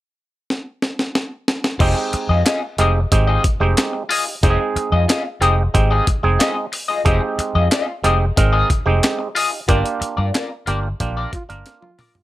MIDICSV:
0, 0, Header, 1, 8, 480
1, 0, Start_track
1, 0, Tempo, 655738
1, 1322, Time_signature, 4, 2, 24, 8
1, 8954, End_track
2, 0, Start_track
2, 0, Title_t, "Clean electric guitar"
2, 0, Program_c, 0, 27
2, 1312, Note_on_c, 0, 65, 88
2, 1321, Note_on_c, 0, 68, 84
2, 1325, Note_on_c, 0, 75, 94
2, 1426, Note_off_c, 0, 75, 0
2, 1428, Note_off_c, 0, 65, 0
2, 1432, Note_off_c, 0, 68, 0
2, 1678, Note_on_c, 0, 75, 69
2, 1690, Note_on_c, 0, 68, 65
2, 1694, Note_on_c, 0, 65, 52
2, 1767, Note_off_c, 0, 75, 0
2, 1773, Note_off_c, 0, 68, 0
2, 1775, Note_off_c, 0, 65, 0
2, 1794, Note_on_c, 0, 65, 72
2, 1803, Note_on_c, 0, 68, 79
2, 1812, Note_on_c, 0, 75, 73
2, 1909, Note_off_c, 0, 65, 0
2, 1912, Note_off_c, 0, 75, 0
2, 1914, Note_off_c, 0, 68, 0
2, 2046, Note_on_c, 0, 65, 70
2, 2052, Note_on_c, 0, 68, 77
2, 2059, Note_on_c, 0, 75, 73
2, 2131, Note_off_c, 0, 65, 0
2, 2134, Note_off_c, 0, 68, 0
2, 2138, Note_off_c, 0, 75, 0
2, 2397, Note_on_c, 0, 75, 79
2, 2408, Note_on_c, 0, 68, 73
2, 2412, Note_on_c, 0, 65, 67
2, 2510, Note_off_c, 0, 65, 0
2, 2511, Note_off_c, 0, 75, 0
2, 2516, Note_off_c, 0, 68, 0
2, 2995, Note_on_c, 0, 65, 88
2, 3003, Note_on_c, 0, 68, 88
2, 3011, Note_on_c, 0, 75, 95
2, 3109, Note_off_c, 0, 75, 0
2, 3111, Note_off_c, 0, 65, 0
2, 3114, Note_off_c, 0, 68, 0
2, 3243, Note_on_c, 0, 65, 81
2, 3250, Note_on_c, 0, 68, 90
2, 3254, Note_on_c, 0, 75, 101
2, 3355, Note_off_c, 0, 65, 0
2, 3358, Note_off_c, 0, 68, 0
2, 3359, Note_off_c, 0, 75, 0
2, 3603, Note_on_c, 0, 75, 68
2, 3608, Note_on_c, 0, 68, 55
2, 3613, Note_on_c, 0, 65, 50
2, 3691, Note_off_c, 0, 75, 0
2, 3693, Note_off_c, 0, 68, 0
2, 3696, Note_off_c, 0, 65, 0
2, 3720, Note_on_c, 0, 65, 90
2, 3729, Note_on_c, 0, 68, 94
2, 3732, Note_on_c, 0, 75, 90
2, 3826, Note_off_c, 0, 75, 0
2, 3833, Note_off_c, 0, 65, 0
2, 3835, Note_off_c, 0, 68, 0
2, 3957, Note_on_c, 0, 65, 61
2, 3965, Note_on_c, 0, 68, 69
2, 3974, Note_on_c, 0, 75, 75
2, 4048, Note_off_c, 0, 65, 0
2, 4052, Note_off_c, 0, 68, 0
2, 4056, Note_off_c, 0, 75, 0
2, 4324, Note_on_c, 0, 75, 77
2, 4331, Note_on_c, 0, 68, 78
2, 4334, Note_on_c, 0, 65, 60
2, 4435, Note_off_c, 0, 65, 0
2, 4436, Note_off_c, 0, 75, 0
2, 4439, Note_off_c, 0, 68, 0
2, 4680, Note_on_c, 0, 65, 85
2, 4692, Note_on_c, 0, 68, 85
2, 4697, Note_on_c, 0, 75, 116
2, 4794, Note_off_c, 0, 65, 0
2, 4800, Note_off_c, 0, 68, 0
2, 4803, Note_off_c, 0, 75, 0
2, 5039, Note_on_c, 0, 75, 64
2, 5048, Note_on_c, 0, 68, 58
2, 5056, Note_on_c, 0, 65, 54
2, 5130, Note_off_c, 0, 75, 0
2, 5135, Note_off_c, 0, 68, 0
2, 5138, Note_off_c, 0, 65, 0
2, 5167, Note_on_c, 0, 65, 97
2, 5174, Note_on_c, 0, 68, 84
2, 5182, Note_on_c, 0, 75, 92
2, 5276, Note_off_c, 0, 75, 0
2, 5278, Note_off_c, 0, 65, 0
2, 5281, Note_off_c, 0, 68, 0
2, 5529, Note_on_c, 0, 75, 64
2, 5533, Note_on_c, 0, 68, 54
2, 5544, Note_on_c, 0, 65, 54
2, 5615, Note_off_c, 0, 75, 0
2, 5617, Note_off_c, 0, 68, 0
2, 5623, Note_off_c, 0, 65, 0
2, 5647, Note_on_c, 0, 65, 86
2, 5653, Note_on_c, 0, 68, 84
2, 5663, Note_on_c, 0, 75, 93
2, 5755, Note_off_c, 0, 75, 0
2, 5764, Note_off_c, 0, 68, 0
2, 5795, Note_off_c, 0, 65, 0
2, 5886, Note_on_c, 0, 65, 65
2, 5896, Note_on_c, 0, 68, 66
2, 5902, Note_on_c, 0, 75, 71
2, 5974, Note_off_c, 0, 65, 0
2, 5979, Note_off_c, 0, 68, 0
2, 5982, Note_off_c, 0, 75, 0
2, 6241, Note_on_c, 0, 75, 92
2, 6246, Note_on_c, 0, 68, 85
2, 6255, Note_on_c, 0, 65, 70
2, 6356, Note_off_c, 0, 65, 0
2, 6356, Note_off_c, 0, 75, 0
2, 6358, Note_off_c, 0, 68, 0
2, 6846, Note_on_c, 0, 65, 81
2, 6856, Note_on_c, 0, 68, 88
2, 6860, Note_on_c, 0, 75, 77
2, 6957, Note_off_c, 0, 75, 0
2, 6958, Note_off_c, 0, 65, 0
2, 6963, Note_off_c, 0, 68, 0
2, 7085, Note_on_c, 0, 65, 87
2, 7093, Note_on_c, 0, 70, 86
2, 7101, Note_on_c, 0, 74, 98
2, 7197, Note_off_c, 0, 65, 0
2, 7197, Note_off_c, 0, 74, 0
2, 7201, Note_off_c, 0, 70, 0
2, 7446, Note_on_c, 0, 74, 64
2, 7451, Note_on_c, 0, 70, 63
2, 7457, Note_on_c, 0, 65, 56
2, 7533, Note_off_c, 0, 74, 0
2, 7536, Note_off_c, 0, 70, 0
2, 7539, Note_off_c, 0, 65, 0
2, 7569, Note_on_c, 0, 65, 84
2, 7576, Note_on_c, 0, 70, 94
2, 7581, Note_on_c, 0, 74, 85
2, 7679, Note_off_c, 0, 65, 0
2, 7680, Note_off_c, 0, 74, 0
2, 7682, Note_off_c, 0, 70, 0
2, 7805, Note_on_c, 0, 65, 58
2, 7812, Note_on_c, 0, 70, 65
2, 7817, Note_on_c, 0, 74, 68
2, 7893, Note_off_c, 0, 65, 0
2, 7896, Note_off_c, 0, 70, 0
2, 7898, Note_off_c, 0, 74, 0
2, 8176, Note_on_c, 0, 74, 82
2, 8183, Note_on_c, 0, 70, 75
2, 8190, Note_on_c, 0, 65, 61
2, 8282, Note_off_c, 0, 74, 0
2, 8285, Note_off_c, 0, 70, 0
2, 8289, Note_off_c, 0, 65, 0
2, 8773, Note_on_c, 0, 65, 78
2, 8780, Note_on_c, 0, 70, 90
2, 8787, Note_on_c, 0, 74, 87
2, 8880, Note_off_c, 0, 65, 0
2, 8882, Note_off_c, 0, 74, 0
2, 8883, Note_off_c, 0, 70, 0
2, 8954, End_track
3, 0, Start_track
3, 0, Title_t, "Trombone"
3, 0, Program_c, 1, 57
3, 8296, Note_on_c, 1, 65, 81
3, 8370, Note_off_c, 1, 65, 0
3, 8646, Note_on_c, 1, 65, 97
3, 8954, Note_off_c, 1, 65, 0
3, 8954, End_track
4, 0, Start_track
4, 0, Title_t, "Clav"
4, 0, Program_c, 2, 7
4, 1318, Note_on_c, 2, 56, 93
4, 1323, Note_on_c, 2, 60, 96
4, 1324, Note_on_c, 2, 63, 83
4, 1327, Note_on_c, 2, 67, 112
4, 1782, Note_off_c, 2, 56, 0
4, 1785, Note_off_c, 2, 60, 0
4, 1785, Note_off_c, 2, 63, 0
4, 1787, Note_off_c, 2, 67, 0
4, 2037, Note_on_c, 2, 56, 79
4, 2041, Note_on_c, 2, 60, 75
4, 2041, Note_on_c, 2, 63, 77
4, 2044, Note_on_c, 2, 67, 88
4, 2194, Note_off_c, 2, 56, 0
4, 2196, Note_off_c, 2, 60, 0
4, 2196, Note_off_c, 2, 63, 0
4, 2197, Note_off_c, 2, 67, 0
4, 2281, Note_on_c, 2, 56, 88
4, 2281, Note_on_c, 2, 60, 84
4, 2285, Note_on_c, 2, 63, 76
4, 2286, Note_on_c, 2, 67, 95
4, 2513, Note_off_c, 2, 56, 0
4, 2513, Note_off_c, 2, 60, 0
4, 2515, Note_off_c, 2, 63, 0
4, 2516, Note_off_c, 2, 67, 0
4, 2638, Note_on_c, 2, 56, 88
4, 2642, Note_on_c, 2, 60, 77
4, 2642, Note_on_c, 2, 63, 75
4, 2643, Note_on_c, 2, 67, 92
4, 2949, Note_off_c, 2, 56, 0
4, 2951, Note_off_c, 2, 60, 0
4, 2951, Note_off_c, 2, 63, 0
4, 2952, Note_off_c, 2, 67, 0
4, 3124, Note_on_c, 2, 63, 32
4, 3129, Note_on_c, 2, 67, 39
4, 3182, Note_off_c, 2, 63, 0
4, 3184, Note_off_c, 2, 67, 0
4, 3241, Note_on_c, 2, 56, 91
4, 3244, Note_on_c, 2, 60, 95
4, 3247, Note_on_c, 2, 63, 92
4, 3249, Note_on_c, 2, 67, 88
4, 3295, Note_off_c, 2, 67, 0
4, 3296, Note_on_c, 2, 68, 116
4, 3705, Note_off_c, 2, 56, 0
4, 3707, Note_off_c, 2, 60, 0
4, 3708, Note_off_c, 2, 63, 0
4, 3733, Note_off_c, 2, 68, 0
4, 3962, Note_on_c, 2, 56, 87
4, 3962, Note_on_c, 2, 60, 74
4, 3963, Note_on_c, 2, 63, 85
4, 3964, Note_on_c, 2, 67, 90
4, 4118, Note_off_c, 2, 56, 0
4, 4118, Note_off_c, 2, 60, 0
4, 4119, Note_off_c, 2, 63, 0
4, 4119, Note_off_c, 2, 67, 0
4, 4201, Note_on_c, 2, 56, 84
4, 4202, Note_on_c, 2, 63, 75
4, 4203, Note_on_c, 2, 60, 84
4, 4206, Note_on_c, 2, 67, 94
4, 4435, Note_off_c, 2, 56, 0
4, 4435, Note_off_c, 2, 63, 0
4, 4436, Note_off_c, 2, 60, 0
4, 4437, Note_off_c, 2, 67, 0
4, 4562, Note_on_c, 2, 56, 85
4, 4566, Note_on_c, 2, 60, 74
4, 4566, Note_on_c, 2, 63, 72
4, 4568, Note_on_c, 2, 68, 88
4, 4873, Note_off_c, 2, 56, 0
4, 4875, Note_off_c, 2, 60, 0
4, 4875, Note_off_c, 2, 63, 0
4, 4875, Note_off_c, 2, 68, 0
4, 5043, Note_on_c, 2, 63, 36
4, 5050, Note_on_c, 2, 68, 38
4, 5103, Note_off_c, 2, 63, 0
4, 5106, Note_off_c, 2, 68, 0
4, 5160, Note_on_c, 2, 56, 104
4, 5162, Note_on_c, 2, 60, 89
4, 5164, Note_on_c, 2, 63, 83
4, 5164, Note_on_c, 2, 67, 111
4, 5626, Note_off_c, 2, 56, 0
4, 5627, Note_off_c, 2, 60, 0
4, 5628, Note_off_c, 2, 63, 0
4, 5628, Note_off_c, 2, 67, 0
4, 5882, Note_on_c, 2, 56, 95
4, 5883, Note_on_c, 2, 60, 82
4, 5885, Note_on_c, 2, 63, 84
4, 5887, Note_on_c, 2, 67, 99
4, 6039, Note_off_c, 2, 56, 0
4, 6040, Note_off_c, 2, 60, 0
4, 6041, Note_off_c, 2, 63, 0
4, 6042, Note_off_c, 2, 67, 0
4, 6128, Note_on_c, 2, 60, 83
4, 6129, Note_on_c, 2, 56, 92
4, 6132, Note_on_c, 2, 63, 82
4, 6133, Note_on_c, 2, 70, 88
4, 6359, Note_off_c, 2, 60, 0
4, 6360, Note_off_c, 2, 56, 0
4, 6361, Note_off_c, 2, 63, 0
4, 6362, Note_off_c, 2, 70, 0
4, 6483, Note_on_c, 2, 56, 93
4, 6486, Note_on_c, 2, 60, 68
4, 6488, Note_on_c, 2, 63, 78
4, 6489, Note_on_c, 2, 67, 88
4, 6794, Note_off_c, 2, 56, 0
4, 6795, Note_off_c, 2, 60, 0
4, 6796, Note_off_c, 2, 63, 0
4, 6797, Note_off_c, 2, 67, 0
4, 6968, Note_on_c, 2, 63, 36
4, 6971, Note_on_c, 2, 67, 39
4, 7026, Note_off_c, 2, 63, 0
4, 7027, Note_off_c, 2, 67, 0
4, 7088, Note_on_c, 2, 58, 98
4, 7092, Note_on_c, 2, 62, 95
4, 7094, Note_on_c, 2, 65, 92
4, 7095, Note_on_c, 2, 67, 110
4, 7549, Note_off_c, 2, 58, 0
4, 7551, Note_off_c, 2, 62, 0
4, 7552, Note_off_c, 2, 65, 0
4, 7553, Note_off_c, 2, 67, 0
4, 7812, Note_on_c, 2, 58, 81
4, 7815, Note_on_c, 2, 62, 82
4, 7817, Note_on_c, 2, 65, 76
4, 7817, Note_on_c, 2, 67, 98
4, 7963, Note_off_c, 2, 58, 0
4, 7965, Note_off_c, 2, 62, 0
4, 7966, Note_off_c, 2, 65, 0
4, 7966, Note_off_c, 2, 67, 0
4, 8052, Note_on_c, 2, 58, 81
4, 8053, Note_on_c, 2, 62, 83
4, 8053, Note_on_c, 2, 65, 83
4, 8056, Note_on_c, 2, 67, 91
4, 8280, Note_off_c, 2, 58, 0
4, 8280, Note_off_c, 2, 62, 0
4, 8281, Note_off_c, 2, 65, 0
4, 8282, Note_off_c, 2, 67, 0
4, 8409, Note_on_c, 2, 58, 81
4, 8409, Note_on_c, 2, 62, 78
4, 8411, Note_on_c, 2, 65, 74
4, 8415, Note_on_c, 2, 70, 88
4, 8715, Note_off_c, 2, 58, 0
4, 8715, Note_off_c, 2, 62, 0
4, 8716, Note_off_c, 2, 65, 0
4, 8718, Note_off_c, 2, 70, 0
4, 8892, Note_on_c, 2, 65, 30
4, 8898, Note_on_c, 2, 67, 36
4, 8946, Note_off_c, 2, 65, 0
4, 8949, Note_off_c, 2, 67, 0
4, 8954, End_track
5, 0, Start_track
5, 0, Title_t, "Fingered electric bass"
5, 0, Program_c, 3, 33
5, 1318, Note_on_c, 3, 29, 89
5, 1409, Note_off_c, 3, 29, 0
5, 1677, Note_on_c, 3, 41, 88
5, 1769, Note_off_c, 3, 41, 0
5, 2040, Note_on_c, 3, 29, 96
5, 2221, Note_off_c, 3, 29, 0
5, 2283, Note_on_c, 3, 32, 76
5, 2463, Note_off_c, 3, 32, 0
5, 2636, Note_on_c, 3, 29, 93
5, 2729, Note_off_c, 3, 29, 0
5, 3243, Note_on_c, 3, 29, 87
5, 3334, Note_off_c, 3, 29, 0
5, 3602, Note_on_c, 3, 41, 84
5, 3693, Note_off_c, 3, 41, 0
5, 3962, Note_on_c, 3, 29, 91
5, 4144, Note_off_c, 3, 29, 0
5, 4205, Note_on_c, 3, 32, 91
5, 4386, Note_off_c, 3, 32, 0
5, 4565, Note_on_c, 3, 29, 88
5, 4656, Note_off_c, 3, 29, 0
5, 5165, Note_on_c, 3, 29, 99
5, 5256, Note_off_c, 3, 29, 0
5, 5527, Note_on_c, 3, 41, 91
5, 5617, Note_off_c, 3, 41, 0
5, 5885, Note_on_c, 3, 29, 98
5, 6066, Note_off_c, 3, 29, 0
5, 6129, Note_on_c, 3, 32, 89
5, 6309, Note_off_c, 3, 32, 0
5, 6487, Note_on_c, 3, 29, 83
5, 6578, Note_off_c, 3, 29, 0
5, 7091, Note_on_c, 3, 31, 93
5, 7180, Note_off_c, 3, 31, 0
5, 7453, Note_on_c, 3, 43, 91
5, 7541, Note_off_c, 3, 43, 0
5, 7814, Note_on_c, 3, 31, 90
5, 7991, Note_off_c, 3, 31, 0
5, 8053, Note_on_c, 3, 34, 90
5, 8231, Note_off_c, 3, 34, 0
5, 8418, Note_on_c, 3, 31, 83
5, 8503, Note_off_c, 3, 31, 0
5, 8954, End_track
6, 0, Start_track
6, 0, Title_t, "Muted clean electric guitar strokes"
6, 1434, Note_on_c, 9, 29, 51
6, 1508, Note_off_c, 9, 29, 0
6, 1558, Note_on_c, 9, 29, 44
6, 1631, Note_off_c, 9, 29, 0
6, 1921, Note_on_c, 9, 29, 37
6, 1994, Note_off_c, 9, 29, 0
6, 2284, Note_on_c, 9, 29, 41
6, 2357, Note_off_c, 9, 29, 0
6, 2519, Note_on_c, 9, 29, 40
6, 2592, Note_off_c, 9, 29, 0
6, 2636, Note_on_c, 9, 29, 31
6, 2709, Note_off_c, 9, 29, 0
6, 2879, Note_on_c, 9, 29, 42
6, 2952, Note_off_c, 9, 29, 0
6, 3118, Note_on_c, 9, 29, 40
6, 3191, Note_off_c, 9, 29, 0
6, 3367, Note_on_c, 9, 29, 37
6, 3441, Note_off_c, 9, 29, 0
6, 3485, Note_on_c, 9, 29, 43
6, 3559, Note_off_c, 9, 29, 0
6, 3835, Note_on_c, 9, 29, 45
6, 3908, Note_off_c, 9, 29, 0
6, 4202, Note_on_c, 9, 29, 40
6, 4275, Note_off_c, 9, 29, 0
6, 4444, Note_on_c, 9, 29, 46
6, 4517, Note_off_c, 9, 29, 0
6, 4563, Note_on_c, 9, 29, 46
6, 4636, Note_off_c, 9, 29, 0
6, 4920, Note_on_c, 9, 29, 45
6, 4993, Note_off_c, 9, 29, 0
6, 5285, Note_on_c, 9, 29, 51
6, 5358, Note_off_c, 9, 29, 0
6, 5407, Note_on_c, 9, 29, 49
6, 5481, Note_off_c, 9, 29, 0
6, 5764, Note_on_c, 9, 29, 52
6, 5837, Note_off_c, 9, 29, 0
6, 6017, Note_on_c, 9, 29, 33
6, 6090, Note_off_c, 9, 29, 0
6, 6123, Note_on_c, 9, 29, 47
6, 6196, Note_off_c, 9, 29, 0
6, 6365, Note_on_c, 9, 29, 37
6, 6438, Note_off_c, 9, 29, 0
6, 6487, Note_on_c, 9, 29, 40
6, 6561, Note_off_c, 9, 29, 0
6, 6724, Note_on_c, 9, 29, 52
6, 6798, Note_off_c, 9, 29, 0
6, 6966, Note_on_c, 9, 29, 40
6, 7039, Note_off_c, 9, 29, 0
6, 7206, Note_on_c, 9, 29, 46
6, 7279, Note_off_c, 9, 29, 0
6, 7320, Note_on_c, 9, 29, 45
6, 7393, Note_off_c, 9, 29, 0
6, 7689, Note_on_c, 9, 29, 41
6, 7762, Note_off_c, 9, 29, 0
6, 7930, Note_on_c, 9, 29, 48
6, 8003, Note_off_c, 9, 29, 0
6, 8052, Note_on_c, 9, 29, 45
6, 8125, Note_off_c, 9, 29, 0
6, 8298, Note_on_c, 9, 29, 43
6, 8371, Note_off_c, 9, 29, 0
6, 8415, Note_on_c, 9, 29, 47
6, 8489, Note_off_c, 9, 29, 0
6, 8654, Note_on_c, 9, 29, 48
6, 8727, Note_off_c, 9, 29, 0
6, 8891, Note_on_c, 9, 29, 47
6, 8954, Note_off_c, 9, 29, 0
6, 8954, End_track
7, 0, Start_track
7, 0, Title_t, "Muted fingered electric bass strokes"
7, 1563, Note_on_c, 9, 29, 45
7, 1637, Note_off_c, 9, 29, 0
7, 3482, Note_on_c, 9, 29, 48
7, 3555, Note_off_c, 9, 29, 0
7, 5405, Note_on_c, 9, 29, 45
7, 5478, Note_off_c, 9, 29, 0
7, 7329, Note_on_c, 9, 29, 49
7, 7402, Note_off_c, 9, 29, 0
7, 8954, End_track
8, 0, Start_track
8, 0, Title_t, "Drums"
8, 368, Note_on_c, 9, 38, 55
8, 441, Note_off_c, 9, 38, 0
8, 603, Note_on_c, 9, 38, 66
8, 676, Note_off_c, 9, 38, 0
8, 727, Note_on_c, 9, 38, 62
8, 800, Note_off_c, 9, 38, 0
8, 844, Note_on_c, 9, 38, 89
8, 917, Note_off_c, 9, 38, 0
8, 1084, Note_on_c, 9, 38, 107
8, 1157, Note_off_c, 9, 38, 0
8, 1203, Note_on_c, 9, 38, 92
8, 1276, Note_off_c, 9, 38, 0
8, 1319, Note_on_c, 9, 36, 103
8, 1319, Note_on_c, 9, 49, 74
8, 1392, Note_off_c, 9, 36, 0
8, 1392, Note_off_c, 9, 49, 0
8, 1559, Note_on_c, 9, 42, 61
8, 1632, Note_off_c, 9, 42, 0
8, 1800, Note_on_c, 9, 42, 94
8, 1804, Note_on_c, 9, 38, 117
8, 1804, Note_on_c, 9, 39, 90
8, 1873, Note_off_c, 9, 42, 0
8, 1877, Note_off_c, 9, 38, 0
8, 1877, Note_off_c, 9, 39, 0
8, 2038, Note_on_c, 9, 42, 70
8, 2111, Note_off_c, 9, 42, 0
8, 2282, Note_on_c, 9, 36, 88
8, 2283, Note_on_c, 9, 42, 95
8, 2355, Note_off_c, 9, 36, 0
8, 2356, Note_off_c, 9, 42, 0
8, 2519, Note_on_c, 9, 42, 68
8, 2520, Note_on_c, 9, 36, 88
8, 2593, Note_off_c, 9, 36, 0
8, 2593, Note_off_c, 9, 42, 0
8, 2761, Note_on_c, 9, 42, 78
8, 2768, Note_on_c, 9, 38, 122
8, 2768, Note_on_c, 9, 39, 91
8, 2834, Note_off_c, 9, 42, 0
8, 2841, Note_off_c, 9, 38, 0
8, 2841, Note_off_c, 9, 39, 0
8, 3006, Note_on_c, 9, 46, 89
8, 3079, Note_off_c, 9, 46, 0
8, 3245, Note_on_c, 9, 36, 120
8, 3246, Note_on_c, 9, 42, 77
8, 3318, Note_off_c, 9, 36, 0
8, 3320, Note_off_c, 9, 42, 0
8, 3488, Note_on_c, 9, 42, 55
8, 3561, Note_off_c, 9, 42, 0
8, 3728, Note_on_c, 9, 42, 89
8, 3732, Note_on_c, 9, 38, 119
8, 3732, Note_on_c, 9, 39, 87
8, 3801, Note_off_c, 9, 42, 0
8, 3806, Note_off_c, 9, 38, 0
8, 3806, Note_off_c, 9, 39, 0
8, 3967, Note_on_c, 9, 42, 69
8, 4040, Note_off_c, 9, 42, 0
8, 4206, Note_on_c, 9, 36, 88
8, 4208, Note_on_c, 9, 42, 84
8, 4279, Note_off_c, 9, 36, 0
8, 4281, Note_off_c, 9, 42, 0
8, 4445, Note_on_c, 9, 36, 86
8, 4445, Note_on_c, 9, 42, 73
8, 4518, Note_off_c, 9, 36, 0
8, 4518, Note_off_c, 9, 42, 0
8, 4686, Note_on_c, 9, 42, 83
8, 4693, Note_on_c, 9, 38, 123
8, 4693, Note_on_c, 9, 39, 88
8, 4759, Note_off_c, 9, 42, 0
8, 4766, Note_off_c, 9, 38, 0
8, 4766, Note_off_c, 9, 39, 0
8, 4924, Note_on_c, 9, 46, 74
8, 4997, Note_off_c, 9, 46, 0
8, 5166, Note_on_c, 9, 36, 99
8, 5166, Note_on_c, 9, 42, 76
8, 5239, Note_off_c, 9, 36, 0
8, 5239, Note_off_c, 9, 42, 0
8, 5408, Note_on_c, 9, 42, 56
8, 5482, Note_off_c, 9, 42, 0
8, 5647, Note_on_c, 9, 42, 98
8, 5651, Note_on_c, 9, 38, 122
8, 5651, Note_on_c, 9, 39, 99
8, 5720, Note_off_c, 9, 42, 0
8, 5724, Note_off_c, 9, 38, 0
8, 5724, Note_off_c, 9, 39, 0
8, 5887, Note_on_c, 9, 42, 70
8, 5961, Note_off_c, 9, 42, 0
8, 6129, Note_on_c, 9, 36, 104
8, 6130, Note_on_c, 9, 42, 94
8, 6202, Note_off_c, 9, 36, 0
8, 6203, Note_off_c, 9, 42, 0
8, 6368, Note_on_c, 9, 36, 82
8, 6370, Note_on_c, 9, 42, 71
8, 6441, Note_off_c, 9, 36, 0
8, 6443, Note_off_c, 9, 42, 0
8, 6611, Note_on_c, 9, 42, 84
8, 6618, Note_on_c, 9, 38, 105
8, 6618, Note_on_c, 9, 39, 89
8, 6684, Note_off_c, 9, 42, 0
8, 6691, Note_off_c, 9, 38, 0
8, 6691, Note_off_c, 9, 39, 0
8, 6854, Note_on_c, 9, 46, 82
8, 6927, Note_off_c, 9, 46, 0
8, 7091, Note_on_c, 9, 36, 115
8, 7091, Note_on_c, 9, 42, 78
8, 7164, Note_off_c, 9, 36, 0
8, 7164, Note_off_c, 9, 42, 0
8, 7214, Note_on_c, 9, 42, 48
8, 7287, Note_off_c, 9, 42, 0
8, 7333, Note_on_c, 9, 42, 65
8, 7406, Note_off_c, 9, 42, 0
8, 7573, Note_on_c, 9, 42, 85
8, 7578, Note_on_c, 9, 38, 110
8, 7578, Note_on_c, 9, 39, 90
8, 7647, Note_off_c, 9, 42, 0
8, 7651, Note_off_c, 9, 38, 0
8, 7651, Note_off_c, 9, 39, 0
8, 7812, Note_on_c, 9, 42, 66
8, 7886, Note_off_c, 9, 42, 0
8, 8053, Note_on_c, 9, 36, 90
8, 8053, Note_on_c, 9, 42, 88
8, 8126, Note_off_c, 9, 42, 0
8, 8127, Note_off_c, 9, 36, 0
8, 8292, Note_on_c, 9, 36, 88
8, 8292, Note_on_c, 9, 42, 70
8, 8365, Note_off_c, 9, 36, 0
8, 8366, Note_off_c, 9, 42, 0
8, 8417, Note_on_c, 9, 42, 57
8, 8490, Note_off_c, 9, 42, 0
8, 8533, Note_on_c, 9, 42, 90
8, 8539, Note_on_c, 9, 38, 55
8, 8606, Note_off_c, 9, 42, 0
8, 8613, Note_off_c, 9, 38, 0
8, 8656, Note_on_c, 9, 48, 53
8, 8729, Note_off_c, 9, 48, 0
8, 8774, Note_on_c, 9, 46, 82
8, 8775, Note_on_c, 9, 45, 97
8, 8847, Note_off_c, 9, 46, 0
8, 8848, Note_off_c, 9, 45, 0
8, 8894, Note_on_c, 9, 43, 90
8, 8954, Note_off_c, 9, 43, 0
8, 8954, End_track
0, 0, End_of_file